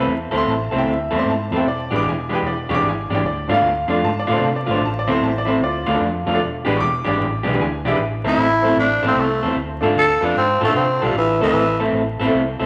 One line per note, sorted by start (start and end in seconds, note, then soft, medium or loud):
0.00 0.13 A3 medium
0.00 0.13 C4 medium
0.00 0.13 E4 medium
0.00 0.12 A4 medium
0.07 0.31 E2 medium
0.31 0.44 D2 medium
0.31 0.53 A3 medium
0.31 0.38 C4 medium
0.31 0.53 C4 medium
0.31 0.53 E4 loud
0.31 0.38 E4 medium
0.31 0.53 A4 loud
0.31 0.39 A4 medium
0.31 0.39 C5 medium
0.38 0.47 C6 loud
0.46 0.71 A1 medium
0.46 0.74 A5 medium
0.71 0.84 C2 medium
0.71 0.93 A3 medium
0.71 0.78 C4 medium
0.71 0.93 C4 medium
0.71 0.78 E4 medium
0.71 0.93 E4 medium
0.71 0.92 A4 medium
0.71 0.79 A4 medium
0.71 0.79 C5 medium
0.78 0.88 G5 loud
0.85 1.10 D2 medium
0.93 1.15 E5 medium
1.11 1.24 E2 medium
1.11 1.33 A3 medium
1.11 1.32 C4 medium
1.11 1.32 E4 loud
1.11 1.32 A4 loud
1.11 1.15 A4 soft
1.11 1.15 C5 soft
1.18 1.24 C4 medium
1.18 1.24 E4 medium
1.18 1.25 A4 medium
1.18 1.25 D5 medium
1.18 1.28 C6 medium
1.24 1.50 G#2 medium
1.30 1.53 A5 medium
1.51 1.63 E2 loud
1.51 1.65 A3 medium
1.51 1.65 C4 medium
1.51 1.64 E4 medium
1.51 1.55 A4 medium
1.51 1.64 A4 medium
1.51 1.56 B4 soft
1.57 1.64 C4 medium
1.57 1.64 E4 medium
1.57 1.65 A4 medium
1.57 1.65 C5 medium
1.57 1.66 G5 medium
1.65 1.90 E1 medium
1.65 1.92 D5 loud
1.91 2.03 A1 medium
1.91 2.12 E3 medium
1.91 2.12 G#3 medium
1.91 2.12 D4 medium
1.91 1.98 D4 medium
1.91 2.12 G4 medium
1.91 1.98 G4 medium
1.91 1.98 G#4 medium
1.91 1.98 B4 medium
1.96 2.06 D6 loud
2.03 2.41 E1 medium
2.09 2.32 G#5 medium
2.29 2.51 E3 medium
2.29 2.51 G#3 medium
2.29 2.51 D4 medium
2.29 2.37 D4 medium
2.29 2.51 G4 medium
2.29 2.37 G4 medium
2.29 2.38 G#4 medium
2.29 2.38 B4 medium
2.35 2.45 G5 medium
2.43 2.68 E1 loud
2.43 2.70 D5 medium
2.69 2.82 E1 loud
2.69 2.91 E3 loud
2.69 2.91 G#3 medium
2.69 2.91 D4 loud
2.69 2.90 G4 loud
2.69 2.73 G#4 soft
2.69 2.74 D5 medium
2.75 2.82 D4 medium
2.75 2.83 G4 medium
2.75 2.83 G#4 medium
2.75 2.83 D5 medium
2.75 2.85 D6 loud
2.83 3.08 G#1 medium
2.89 3.12 G#5 medium
3.10 3.24 G#1 loud
3.10 3.23 E3 medium
3.10 3.23 G#3 medium
3.10 3.23 D4 medium
3.10 3.23 G4 medium
3.10 3.13 G#4 medium
3.10 3.14 D5 medium
3.14 3.22 D4 medium
3.14 3.22 G4 medium
3.14 3.22 G#4 medium
3.14 3.22 D5 medium
3.14 3.25 G5 medium
3.22 3.48 D2 medium
3.22 3.48 D5 medium
3.48 3.61 G#2 medium
3.48 3.71 D3 medium
3.48 3.71 A3 medium
3.48 3.55 D4 medium
3.48 3.70 D4 loud
3.48 3.55 F4 medium
3.48 3.70 F4 loud
3.48 3.56 A4 medium
3.48 3.56 D5 medium
3.54 3.90 F5 loud
3.61 3.87 D2 loud
3.88 4.01 F2 loud
3.88 4.10 D3 medium
3.88 4.10 A3 medium
3.88 4.09 D4 medium
3.88 3.95 D4 medium
3.88 4.09 F4 medium
3.88 3.95 F4 medium
3.88 3.96 A4 medium
3.88 3.96 D5 medium
4.02 4.27 G#2 loud
4.02 4.16 A5 loud
4.19 4.28 D5 loud
4.27 4.40 A2 medium
4.27 4.49 D3 medium
4.27 4.49 A3 loud
4.27 4.49 D4 loud
4.27 4.49 F4 loud
4.27 4.31 A4 soft
4.27 4.32 D5 medium
4.33 4.41 D4 medium
4.33 4.42 F4 medium
4.33 4.42 A4 medium
4.33 4.43 C5 medium
4.33 4.42 D5 medium
4.41 4.66 C3 medium
4.41 4.55 A5 medium
4.56 4.68 D5 medium
4.66 4.80 G#1 medium
4.66 4.80 D3 medium
4.66 4.80 A3 medium
4.66 4.80 D4 medium
4.66 4.80 F4 medium
4.66 4.71 A4 medium
4.66 4.72 D5 medium
4.71 4.80 D4 medium
4.71 4.81 F4 medium
4.71 4.81 A4 medium
4.71 4.82 C5 medium
4.75 4.81 D5 medium
4.81 5.06 A1 medium
4.85 4.96 A5 loud
4.99 5.09 D5 loud
5.07 5.20 D2 medium
5.07 5.29 A2 medium
5.07 5.28 A3 medium
5.07 5.28 C4 loud
5.07 5.14 C4 medium
5.07 5.28 E4 loud
5.07 5.14 E4 medium
5.07 5.15 A4 medium
5.07 5.10 C5 medium
5.12 5.22 C5 loud
5.21 5.58 A1 loud
5.21 5.35 A5 loud
5.38 5.49 D5 loud
5.45 5.60 A2 medium
5.45 5.60 A3 medium
5.45 5.60 C4 medium
5.45 5.54 C4 medium
5.45 5.59 E4 medium
5.45 5.54 E4 medium
5.45 5.54 A4 medium
5.45 5.54 C5 medium
5.61 5.86 D2 medium
5.61 5.93 F4 medium
5.61 5.87 D5 loud
5.86 5.99 D2 medium
5.86 6.08 D3 medium
5.86 6.08 A3 loud
5.86 6.08 D4 medium
5.86 6.07 F4 loud
5.86 5.90 A4 soft
5.86 5.91 D5 medium
5.94 6.00 D4 medium
5.94 6.00 F4 medium
5.94 6.00 A4 medium
5.94 6.00 D5 medium
6.00 6.25 F2 medium
6.26 6.42 F2 loud
6.26 6.40 D3 medium
6.26 6.39 A3 medium
6.26 6.39 D4 medium
6.26 6.39 F4 medium
6.26 6.29 A4 medium
6.26 6.30 D5 medium
6.34 6.40 D4 medium
6.34 6.39 F4 medium
6.34 6.40 A4 medium
6.34 6.40 D5 medium
6.40 6.65 E1 medium
6.65 6.78 A1 medium
6.65 6.86 E3 medium
6.65 6.86 G#3 loud
6.65 6.86 D4 medium
6.65 6.72 D4 medium
6.65 6.86 G4 loud
6.65 6.72 G4 medium
6.65 6.73 G#4 medium
6.65 6.73 B4 loud
6.77 7.05 E1 loud
6.77 6.80 C#6 medium
6.77 7.56 D6 loud
7.04 7.18 G#1 loud
7.04 7.26 E3 medium
7.04 7.26 G#3 medium
7.04 7.26 D4 medium
7.04 7.12 D4 medium
7.04 7.26 G4 medium
7.04 7.13 G4 medium
7.04 7.12 G#4 medium
7.04 7.13 D5 medium
7.20 7.44 A1 loud
7.43 7.58 B1 medium
7.43 7.66 E3 medium
7.43 7.65 G#3 loud
7.43 7.65 D4 loud
7.43 7.65 G4 loud
7.43 7.48 G#4 medium
7.43 7.49 B4 medium
7.53 7.59 D4 medium
7.53 7.58 G4 medium
7.53 7.59 G#4 medium
7.53 7.59 B4 medium
7.59 7.83 D2 medium
7.59 7.85 G#5 medium
7.85 7.97 B1 loud
7.85 7.98 E3 medium
7.85 7.98 G#3 medium
7.85 7.97 D4 medium
7.85 7.97 G4 medium
7.85 7.90 G4 medium
7.85 7.88 G#4 medium
7.85 7.90 D5 medium
7.85 7.98 E5 loud
7.91 7.97 D4 medium
7.91 7.98 G4 medium
7.91 7.98 G#4 medium
7.91 7.98 B4 medium
7.98 8.23 A1 medium
8.24 8.36 D2 medium
8.24 8.45 A3 medium
8.24 8.30 C4 medium
8.24 8.45 C4 medium
8.24 8.45 E4 medium
8.24 8.31 E4 medium
8.24 8.77 E4 loud
8.24 8.45 A4 medium
8.24 8.31 A4 medium
8.24 8.31 C5 medium
8.37 8.74 A1 medium
8.62 8.85 A3 medium
8.62 8.69 C4 medium
8.62 8.85 C4 medium
8.62 8.70 E4 medium
8.62 8.85 E4 medium
8.62 8.69 A4 medium
8.62 8.85 A4 medium
8.62 8.70 C5 medium
8.77 9.02 A1 loud
8.77 9.04 D4 medium
9.01 9.14 A1 medium
9.01 9.24 A3 medium
9.01 9.24 C4 loud
9.01 9.24 E4 loud
9.01 9.05 A4 soft
9.01 9.24 A4 loud
9.01 9.06 C5 medium
9.08 9.22 C4 medium
9.08 9.15 C4 medium
9.08 9.15 E4 medium
9.08 9.16 A4 medium
9.08 9.16 D5 medium
9.15 9.41 C2 medium
9.20 9.56 A3 medium
9.41 9.55 E2 loud
9.41 9.55 A3 medium
9.41 9.55 C4 medium
9.41 9.55 E4 medium
9.41 9.45 A4 soft
9.41 9.55 A4 medium
9.41 9.46 C5 medium
9.48 9.55 C4 medium
9.48 9.55 E4 medium
9.48 9.55 A4 medium
9.48 9.55 C5 medium
9.56 9.81 D2 medium
9.81 9.94 G#2 medium
9.81 10.04 D3 medium
9.81 9.88 A3 medium
9.81 9.88 D4 medium
9.81 10.03 D4 medium
9.81 9.88 F4 medium
9.81 10.03 F4 medium
9.81 9.88 A4 medium
9.81 10.03 A4 loud
9.96 10.21 D2 medium
9.96 10.27 A4 loud
10.20 10.34 F2 loud
10.20 10.43 D3 medium
10.20 10.27 A3 medium
10.20 10.27 D4 medium
10.20 10.43 D4 medium
10.20 10.28 F4 medium
10.20 10.43 F4 medium
10.20 10.42 A4 medium
10.20 10.28 B4 medium
10.25 10.36 D4 medium
10.35 10.60 G#2 medium
10.35 10.62 C4 loud
10.60 10.73 A2 medium
10.60 10.83 D3 medium
10.60 10.82 D4 loud
10.60 10.64 F4 soft
10.60 10.82 F4 loud
10.60 10.82 A4 loud
10.60 10.65 A4 medium
10.64 10.75 A3 loud
10.64 10.74 A3 medium
10.64 10.74 D4 medium
10.64 10.74 F4 medium
10.69 10.75 A4 medium
10.74 10.99 C3 medium
10.74 11.05 C4 medium
10.99 11.13 B1 medium
10.99 11.14 D4 medium
10.99 11.03 F4 medium
10.99 11.14 F4 medium
10.99 11.04 A4 medium
10.99 11.14 A4 medium
11.03 11.15 D3 medium
11.03 11.15 G3 medium
11.03 11.13 A3 medium
11.03 11.13 D4 medium
11.07 11.14 F4 medium
11.07 11.14 A4 medium
11.14 11.39 A1 loud
11.14 11.42 E3 loud
11.39 11.52 D2 medium
11.39 11.46 A3 medium
11.39 11.62 A3 medium
11.39 11.46 C4 medium
11.39 11.62 C4 medium
11.39 11.46 E4 medium
11.39 11.62 E4 medium
11.39 11.47 A4 medium
11.39 11.62 A4 loud
11.43 11.80 E3 loud
11.53 11.90 A1 medium
11.79 11.86 A3 medium
11.79 12.01 A3 medium
11.79 11.86 C4 medium
11.79 12.01 C4 medium
11.79 11.86 E4 medium
11.79 12.01 E4 medium
11.79 12.01 A4 medium
11.79 11.86 A4 medium
11.93 12.18 A1 medium
12.19 12.32 A1 loud
12.19 12.41 A3 medium
12.19 12.41 C4 loud
12.19 12.22 E4 medium
12.19 12.41 E4 medium
12.19 12.40 A4 loud
12.19 12.23 B4 medium
12.26 12.32 A3 loud
12.26 12.33 C4 medium
12.26 12.33 E4 medium
12.26 12.33 A4 loud
12.33 12.58 C2 medium
12.60 12.66 C2 medium
12.60 12.66 A3 medium
12.60 12.66 C4 medium
12.60 12.66 E4 medium
12.60 12.63 E4 medium
12.60 12.66 A4 medium
12.60 12.63 C5 medium